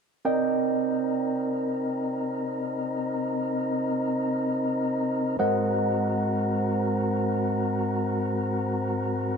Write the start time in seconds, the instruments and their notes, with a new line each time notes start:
0.25 tonewheel organ C3 C4 D#4 A#4, tine electric piano C4 A#4 D5 D#5 G5
5.39 tonewheel organ G#2 C4 F#4 A#4, tine electric piano G#3 A#4 C5 D#5 F#5